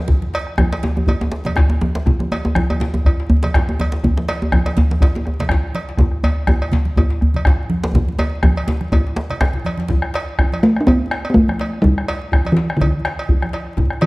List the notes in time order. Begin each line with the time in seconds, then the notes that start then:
0.08 bombo rim, bombo low, djembe slap, djembe tone, low conga, djembe bass
0.22 high conga
0.34 cowbell, djembe slap
0.47 bombo rim
0.58 bombo rim, bombo low, djembe tone, high conga, djembe bass
0.72 cowbell, djembe slap, high conga
0.83 djembe slap, djembe tone, low conga
0.96 bombo rim, high conga, djembe tone
1.07 bombo low, cowbell, djembe slap, high conga, djembe tone, djembe bass
1.21 djembe slap, high conga, djembe tone
1.32 djembe slap, high conga
1.45 bombo rim, cowbell, djembe tone, high conga, low conga
1.56 bombo rim, bombo low, djembe slap, djembe tone, djembe bass
1.70 djembe tone
1.81 djembe tone, high conga
1.95 djembe slap, high conga
2.06 bombo rim, bombo low, djembe tone, djembe bass, low conga
2.19 bombo rim, high conga, djembe tone
2.32 cowbell, djembe slap, djembe tone
2.45 djembe tone
2.55 bombo rim, bombo low, djembe slap, high conga, djembe bass
2.70 cowbell, djembe tone
2.80 djembe slap, djembe tone, high conga, low conga
2.94 djembe tone, high conga
3.05 bombo low, cowbell, djembe tone, djembe bass
3.20 djembe slap
3.30 bombo rim, djembe bass
3.43 cowbell, djembe slap, high conga, low conga
3.54 bombo rim, bombo low, djembe slap, djembe bass
3.69 djembe tone
3.79 cowbell, djembe tone, high conga
3.92 djembe slap
4.03 bombo rim, bombo low, djembe tone, djembe bass, low conga
4.17 bombo rim, djembe slap, high conga
4.28 cowbell, djembe slap
4.42 djembe tone
4.52 bombo rim, bombo low, djembe tone, high conga, djembe bass
4.66 cowbell, djembe slap
4.77 djembe slap, high conga, low conga, djembe bass
4.91 djembe slap, high conga
5.01 bombo low, cowbell, djembe slap, djembe tone, djembe bass
5.15 djembe slap, djembe tone
5.25 bombo rim, djembe tone
5.40 cowbell, djembe slap, high conga, low conga
5.49 bombo rim, bombo low, djembe slap, djembe bass
5.75 cowbell, high conga
5.89 djembe slap
5.97 bombo rim, bombo low, djembe tone, low conga
6.01 djembe tone, djembe bass
6.12 bombo rim
6.24 cowbell, djembe slap, djembe bass
6.47 bombo rim, bombo low, high conga, djembe tone, djembe bass
6.62 cowbell
6.72 djembe slap, high conga, low conga, djembe bass
6.85 high conga
6.96 bombo low, cowbell, djembe tone, djembe bass
7.10 djembe slap
7.21 bombo rim, djembe bass
7.34 cowbell, high conga, low conga
7.45 bombo rim, bombo low, djembe slap, djembe bass
7.70 high conga
7.84 djembe slap
7.94 bombo low, djembe tone, high conga, low conga, djembe bass
8.08 high conga
8.19 cowbell, djembe slap, djembe tone, high conga
8.33 high conga
8.43 bombo rim, bombo low, djembe slap, djembe tone, high conga, djembe bass
8.57 cowbell, djembe slap
8.67 bombo rim, djembe slap, djembe tone, low conga
8.81 bombo rim, high conga
8.92 bombo rim, bombo low, cowbell, djembe tone, djembe bass
9.07 djembe slap
9.16 bombo rim, djembe slap, high conga
9.30 bombo rim, cowbell, low conga, djembe bass
9.41 bombo rim, bombo low, djembe slap, low conga, djembe bass
9.53 bombo rim, low conga, djembe bass
9.65 cowbell, djembe slap, high conga
9.78 bombo rim, djembe slap, high conga
9.88 bombo rim, bombo low, djembe tone, low conga, djembe bass
10.02 bombo rim, djembe slap
10.14 cowbell, djembe slap
10.38 bombo rim, bombo low, djembe bass
10.52 cowbell, high conga
10.63 A3, djembe slap
10.76 bombo rim
10.81 D4
10.87 B3, bombo low, cowbell, high conga, djembe tone, low conga, djembe bass
11.11 bombo rim, djembe slap
11.25 cowbell
11.30 B3
11.34 A3, bombo low, djembe bass
11.49 bombo rim, high conga
11.59 cowbell, djembe slap
11.73 bombo rim
11.82 G3, bombo rim, bombo low, djembe tone, low conga, djembe bass
11.97 bombo rim, djembe slap
12.08 cowbell, djembe slap
12.32 bombo rim, bombo low, djembe bass
12.45 cowbell, high conga
12.52 E3
12.57 djembe slap
12.70 bombo rim
12.77 D3, djembe tone, djembe bass
12.81 bombo low, cowbell, high conga, low conga
13.05 bombo rim, djembe slap
13.19 cowbell
13.29 bombo low, djembe bass
13.42 bombo rim, high conga
13.53 cowbell, djembe slap
13.67 bombo rim
13.77 bombo rim, bombo low, djembe tone, djembe bass, low conga
13.90 bombo rim, djembe slap
14.01 E3, cowbell, djembe slap